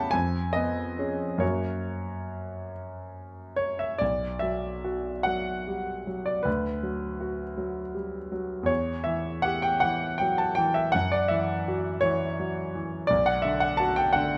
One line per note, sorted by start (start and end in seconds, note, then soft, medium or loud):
0.00 0.15 E2 medium
0.00 0.15 G3 soft
0.00 0.15 C#4 soft
0.00 0.16 G4 soft
0.00 0.15 E5 medium
0.00 0.16 F#5 medium
0.00 0.16 G5 medium
0.00 0.12 A5 medium
0.00 0.15 B5 medium
0.11 1.38 F2 medium
0.11 0.54 G#5 medium
0.53 1.24 B3 soft
0.53 1.40 D#5 medium
0.99 1.38 C#4 soft
0.99 1.38 G#4 soft
1.38 3.95 F#2 soft
1.38 3.95 A#3 soft
1.38 3.96 C#4 soft
1.38 3.97 F#4 soft
1.38 2.72 C#5 medium
3.56 3.79 C#5 medium
3.79 4.00 E5 medium
3.98 6.42 B1 soft
3.98 4.41 D5 medium
4.39 5.10 F#3 soft
4.39 5.25 E5 medium
4.84 5.52 F#4 soft
5.23 5.92 F#3 soft
5.23 6.25 F#5 medium
5.68 6.07 G3 soft
6.07 6.46 F#3 soft
6.26 6.46 D5 medium
6.43 8.65 D2 soft
6.43 7.93 B4 medium
6.83 7.43 F#3 soft
7.20 7.80 F#4 soft
7.57 8.17 F#3 soft
7.95 8.32 G3 soft
8.32 8.69 F#3 soft
8.63 10.88 E2 soft
8.63 9.05 C#5 medium
9.04 9.67 E3 soft
9.04 9.43 E5 medium
9.42 10.05 G4 soft
9.42 9.63 F#5 medium
9.62 9.82 G5 medium
9.80 10.43 E3 soft
9.80 10.19 F#5 medium
10.18 10.58 F#3 soft
10.18 10.38 G5 medium
10.38 10.57 A5 medium
10.55 10.95 E3 soft
10.55 10.75 G5 medium
10.74 10.94 E5 medium
10.92 13.06 F#2 medium
10.92 11.12 F#5 medium
11.12 11.31 D5 medium
11.28 11.89 E3 soft
11.28 12.02 E5 medium
11.68 12.25 F#4 soft
12.01 12.60 E3 soft
12.01 13.09 C#5 medium
12.40 12.75 F#3 soft
12.75 13.10 E3 soft
13.07 14.38 B1 medium
13.07 13.26 D5 medium
13.26 13.44 F#5 medium
13.42 14.00 D3 soft
13.42 13.61 E5 medium
13.60 13.79 F#5 medium
13.77 14.36 F#4 soft
13.77 13.96 A5 medium
13.96 14.14 G5 medium
14.13 14.38 D3 soft
14.13 14.38 F#5 medium